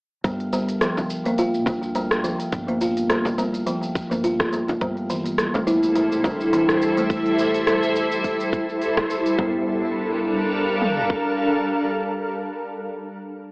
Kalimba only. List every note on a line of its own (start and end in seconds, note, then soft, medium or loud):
0.24 0.51 G3 medium
0.53 0.80 G3 medium
0.81 0.90 F3 medium
1.26 1.37 A#3 medium
1.39 1.48 F4 medium
1.67 1.94 G3 medium
1.96 2.23 G3 medium
2.24 2.33 F3 medium
2.69 2.80 A#3 medium
2.81 2.90 F4 medium
3.10 3.37 G3 medium
3.38 3.66 G3 loud
3.67 3.76 F3 medium
4.11 4.23 A#3 medium
4.24 4.33 F4 medium
4.53 4.80 G3 medium
4.81 5.08 G3 medium
5.10 5.19 E3 medium
5.54 5.66 A3 medium
5.67 5.76 E4 medium
5.96 6.23 G3 medium
6.24 6.51 G3 loud
6.53 6.62 E3 medium
6.97 7.09 A3 medium
9.39 9.65 G3 medium